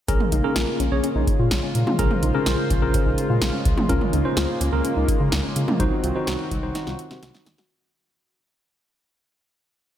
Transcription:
0.08 A#1 C#3 G#3 A#3 C#4 F4 G#4 A#4, kick, closed hi-hat
0.20 mid tom
0.32 A#1 D#4, closed hi-hat
0.44 C#4 G#4 A#4
0.56 A#1 F4, snare, closed hi-hat
0.80 A#1 C#4, closed hi-hat
0.92 A#1 C#4 G#4 C#5
1.04 C#4, closed hi-hat
1.16 A#1 D#4
1.27 kick, closed hi-hat
1.39 A#2 F4
1.51 A#1, snare, closed hi-hat
1.63 C#4
1.75 A#2, closed hi-hat
1.87 F4, mid tom
1.99 A#1 C#4 G#4 A#4 C5, kick, closed hi-hat
2.11 mid tom
2.23 A#1 D#4, closed hi-hat
2.35 C#4 G#4 A#4
2.46 A#1 F4, snare, closed hi-hat
2.70 A#1 C#4, kick, closed hi-hat
2.82 A#1 C#4 G#4 A#4
2.94 C#4, kick, closed hi-hat
3.06 A#1 D#4
3.18 closed hi-hat
3.30 A#2 F4
3.42 A#1, snare, closed hi-hat
3.54 C#4
3.65 C#2, kick, closed hi-hat
3.77 F4, mid tom
3.89 C#2 A#3 C#4 F4 A#4, kick, closed hi-hat
4.01 mid tom
4.13 C#2 D#4, closed hi-hat
4.25 C#4 F4 C5
4.37 C#2 F4, snare, closed hi-hat
4.61 C#2 C#4, closed hi-hat
4.73 C#2 C#4 F4 A#4
4.85 C#4, closed hi-hat
4.96 C#2 D#4
5.08 kick, closed hi-hat
5.20 C#3 F4
5.32 C#2, snare, closed hi-hat
5.44 C#4
5.56 C#3, closed hi-hat
5.68 F4, mid tom
5.80 C2 D#3 F#3 C4 D#4 F#4 C5, kick, closed hi-hat
6.04 C2 F4, closed hi-hat
6.16 D#4 F#4 C5
6.27 C2 F#4, snare, closed hi-hat
6.51 C2 D#4, kick, closed hi-hat
6.63 C2 D#4 F#4 C5
6.75 D#4, snare, closed hi-hat
6.87 C2 F4, snare
6.99 closed hi-hat
7.11 C3 F#4, snare
7.23 C2, snare, closed hi-hat
7.35 D#4, snare
7.46 D#2, snare, closed hi-hat
7.58 F#4, snare

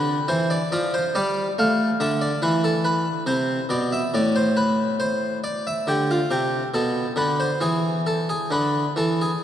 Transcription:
Already playing: D3 B4
0.28 E3 C5
0.50 D5
0.72 F3 D5
0.94 C5
1.15 G3 D5
1.58 A3 F5
2.00 D3 E5
2.21 D5
2.42 E3 B4
2.64 A4
2.85 B4
3.26 C3 C5
3.69 B2 D5
3.92 E5
4.14 A2 D5
4.36 C5
4.57 B4
5.00 C5
5.44 D5
5.67 E5
5.87 D3 G4
6.11 F4
6.31 C3 G4
6.74 B2 A4
7.16 D3 B4
7.40 C5
7.61 E3 G#4
8.07 A4
8.29 G#4
8.51 D3 B4
8.96 E3 A4
9.21 G#4

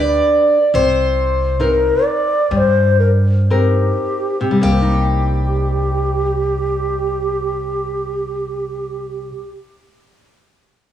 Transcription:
Already playing: D2 D4 G4 B4 D5
0.74 C2 C3 C5
1.60 C4 D#4 A#4 B4
1.64 A#4
2.05 D5
2.51 G2 G3 D5
2.57 C5
3.00 A#4
3.50 C4 D#4 G4 G#4 A#4
4.41 C3
4.51 G3
4.61 C2 A#3 G4 G#4
4.66 G4
4.71 C4
4.82 D#4

